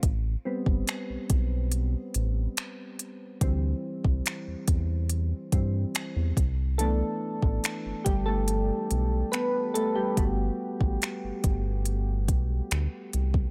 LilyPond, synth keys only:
\new Staff \with { instrumentName = "Synth keys" } { \time 4/4 \key a \dorian \tempo 4 = 71 << { r1 | r1 | <a a'>4. <g g'>16 <a a'>4~ <a a'>16 <b b'>8 <a a'>16 <g g'>16~ | <g g'>2. r4 | } \\ { r8 <g b c'>4. r2 | <e g c'>4. r4 <e g c'>8 r4 | <e b d'>4. r2 r8 | <a b fis'>1 | } >> }